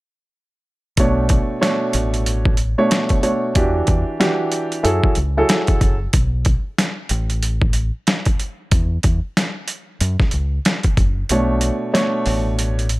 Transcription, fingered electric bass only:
0.98 1.37 B1 loud
1.95 2.74 A1 loud
3.56 3.81 E2 loud
3.88 4.03 E2 medium
4.85 5.00 F#2 loud
5.04 muted fingered electric bass stroke soft
5.17 5.42 C#2 medium
5.81 6.06 F#1 medium
6.14 6.53 B1 loud
7.11 7.90 A1 loud
8.72 8.97 E2 loud
9.04 9.19 E2 medium
10.01 10.16 F#2 loud
10.20 muted fingered electric bass stroke soft
10.34 10.58 C#2 medium
10.97 11.22 F#1 medium
11.30 11.70 B1 loud
12.27 13.00 A1 loud

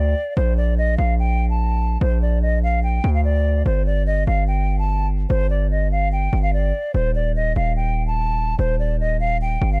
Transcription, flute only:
0.00 0.34 D5 medium
0.37 0.54 C5 loud
0.57 0.74 D5 medium
0.78 0.95 D#5 medium
0.98 1.15 F5 medium
1.19 1.48 G5 medium
1.50 1.98 A5 medium
2.02 2.18 C5 loud
2.22 2.39 D5 medium
2.42 2.59 D#5 medium
2.63 2.80 F5 medium
2.83 3.12 G5 medium
3.14 3.23 F5 medium
3.24 3.63 D5 medium
3.66 3.83 C5 loud
3.86 4.03 D5 medium
4.07 4.24 D#5 medium
4.27 4.44 F5 medium
4.48 4.77 G5 medium
4.79 5.07 A5 medium
5.30 5.47 C5 loud
5.50 5.67 D5 medium
5.71 5.88 D#5 medium
5.92 6.09 F5 medium
6.12 6.41 G5 medium
6.42 6.51 F5 medium
6.53 6.92 D5 medium
6.94 7.11 C5 loud
7.15 7.32 D5 medium
7.36 7.53 D#5 medium
7.56 7.73 F5 medium
7.76 8.05 G5 medium
8.07 8.56 A5 medium
8.59 8.76 C5 loud
8.79 8.96 D5 medium
9.00 9.17 D#5 medium
9.20 9.37 F5 medium
9.42 9.70 G5 medium
9.73 9.80 F5 medium

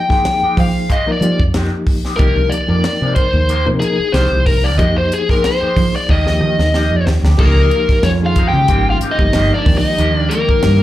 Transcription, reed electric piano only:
0.08 0.92 F3 medium
0.08 0.93 A#3 medium
0.08 0.93 D#4 medium
0.08 0.93 G#4 medium
1.06 1.19 F3 medium
1.06 1.20 A#3 medium
1.06 1.20 D#4 medium
1.06 1.20 A#4 medium
1.21 1.37 F3 medium
1.21 1.37 A#3 medium
1.21 1.38 D#4 medium
1.21 1.38 G4 medium
1.40 1.47 D#4 soft
1.40 1.47 G#4 soft
1.53 2.11 F3 medium
1.53 2.11 A#3 medium
1.53 2.12 D#4 medium
1.53 2.12 G4 medium
2.17 2.61 F3 medium
2.17 2.62 A#3 medium
2.17 2.62 D#4 medium
2.17 2.62 G4 medium
2.67 3.52 F3 medium
2.67 3.52 A#3 medium
2.67 3.53 D#4 medium
2.67 3.53 A#4 medium
3.65 3.79 F3 medium
3.65 3.79 A#3 medium
3.65 3.79 D#4 medium
3.65 3.80 A#4 medium
3.80 3.96 F3 medium
3.80 3.97 A#3 medium
3.80 3.97 D#4 medium
3.80 3.97 A#4 medium
3.98 4.06 D#4 soft
3.98 4.06 G4 soft
4.13 4.71 F3 medium
4.13 4.71 A#3 medium
4.13 4.71 D#4 medium
4.13 4.72 G4 medium
4.78 5.22 F3 medium
4.78 5.22 A#3 medium
4.78 5.22 D#4 medium
4.78 5.22 G4 medium
5.28 6.09 F3 medium
5.28 6.09 A#3 medium
5.28 6.09 D#4 medium
5.28 6.10 G#4 medium
6.25 6.38 F3 medium
6.25 6.39 A#3 medium
6.25 6.39 D#4 medium
6.25 6.40 G4 medium
6.39 6.56 F3 medium
6.39 6.56 A#3 medium
6.39 6.56 D#4 medium
6.39 6.57 G4 medium
6.58 6.66 D#4 soft
6.58 6.66 A#4 soft
6.72 7.30 F3 medium
6.72 7.31 A#3 medium
6.72 7.31 D#4 medium
6.72 7.31 G4 medium
7.37 8.10 F3 medium
7.37 8.10 A#3 medium
7.37 8.10 D#4 medium
7.37 8.10 G4 loud
8.21 8.34 F3 medium
8.21 8.34 A#3 medium
8.21 8.35 D#4 medium
8.21 8.35 G#4 medium
8.36 8.45 D#4 soft
8.36 8.46 G4 soft
8.69 8.98 F3 medium
8.69 8.98 A#3 medium
8.69 8.98 D#4 medium
8.69 8.98 G4 medium
9.00 9.09 D#4 soft
9.00 9.10 G#4 soft
9.17 9.65 F3 medium
9.17 9.65 A#3 medium
9.17 9.66 D#4 medium
9.17 9.66 G4 medium
9.66 10.65 F3 medium
9.66 10.66 A#3 medium
9.66 10.66 D#4 medium
9.66 10.66 G4 medium

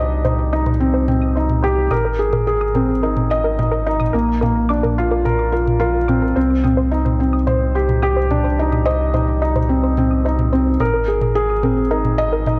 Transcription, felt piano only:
0.00 1.93 D4 medium
0.00 0.25 D#4 medium
0.00 1.64 G4 medium
0.00 1.94 C5 medium
0.00 0.23 D#5 medium
0.25 0.51 D#4 medium
0.53 0.69 D#4 medium
0.80 1.07 C4 medium
1.08 1.34 C4 medium
1.37 1.63 D#4 medium
1.64 1.90 G4 medium
1.91 2.18 A#4 medium
2.19 2.46 G#4 medium
2.47 2.63 G#4 medium
2.75 2.91 C4 medium
3.03 3.29 D#4 medium
3.31 3.57 D#5 medium
3.59 3.85 D#4 medium
3.87 4.02 D#4 medium
4.14 4.40 A#3 medium
4.43 4.69 A#3 medium
4.70 4.96 D4 medium
4.98 5.24 F4 medium
5.25 5.51 A#4 medium
5.52 5.78 F4 medium
5.80 5.96 F4 medium
6.09 6.24 C4 medium
6.36 6.62 C4 medium
6.64 6.90 C4 medium
6.91 7.18 D#4 medium
7.20 7.35 C4 medium
7.47 7.73 C5 medium
7.75 8.01 G4 medium
8.03 8.18 G4 medium
8.31 8.46 D4 medium
8.59 8.85 D#4 medium
8.86 9.12 D#5 medium
9.14 9.40 D#4 medium
9.42 9.57 D#4 medium
9.69 9.96 C4 medium
9.98 10.24 C4 medium
10.26 10.52 D#4 medium
10.53 10.69 C4 medium
10.80 11.07 A#4 medium
11.08 11.34 G#4 medium
11.35 11.51 G#4 medium
11.63 11.79 C4 medium
11.91 12.18 D#4 medium
12.18 12.45 D#5 medium
12.47 12.60 D#4 medium

